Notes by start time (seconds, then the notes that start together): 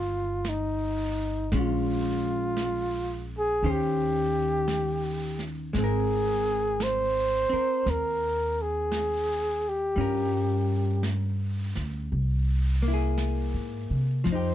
Already playing: G1 D#3 A#3 F4
0.45 brush sweep, snare, hi-hat pedal
0.49 D#4
1.52 A#1 G#3 C#4, brush sweep, snare
1.57 F4
2.57 brush sweep, snare, hi-hat pedal
3.38 G#4
3.63 D#2 D#3 C#4 G4 C5, brush sweep
3.71 G4
4.68 brush sweep, snare, hi-hat pedal
5.39 snare
5.73 G#1 G#3, brush sweep, snare
5.78 C4 G#4
5.84 A#4
6.80 C5, brush sweep, snare, hi-hat pedal
7.50 C4 A#4, muted upright bass stroke
7.86 D#2, brush sweep, snare
7.90 A#4
8.62 G#4
8.92 brush sweep, snare, hi-hat pedal
9.69 G4
9.96 G2 G3 C#4 F4, brush sweep
10.01 A#4
11.03 brush sweep, snare, hi-hat pedal
11.75 D2, snare
12.10 C2, brush sweep
12.82 A#3
12.88 E4
12.94 G#4
13.18 brush sweep, snare, hi-hat pedal
13.54 G#2
13.90 C3
14.24 F2 F3, brush sweep, snare
14.32 D#4 G4 C5